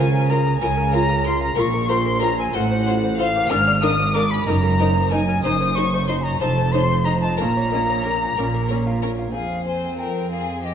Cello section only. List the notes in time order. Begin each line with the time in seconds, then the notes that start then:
Already playing: C#3
0.61 C#3
1.57 A#2
2.54 A2
3.50 G#2
4.48 F#2
5.44 F#2
6.41 F2
7.39 A#2
8.37 A#2
9.35 F2